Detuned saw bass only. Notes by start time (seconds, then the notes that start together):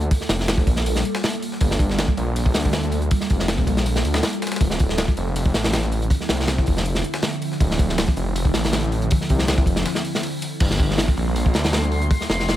0.30 F1
0.67 A#1
1.61 G1
2.17 A#1
2.55 D2
3.31 F1
3.67 A#1
4.05 D2
4.61 D1
5.17 F1
5.55 A1
6.30 C2
6.68 F1
7.61 D1
8.17 F1
8.54 A1
9.30 C2
9.66 F1
10.61 G1
11.17 A#1
11.55 D2
12.30 F1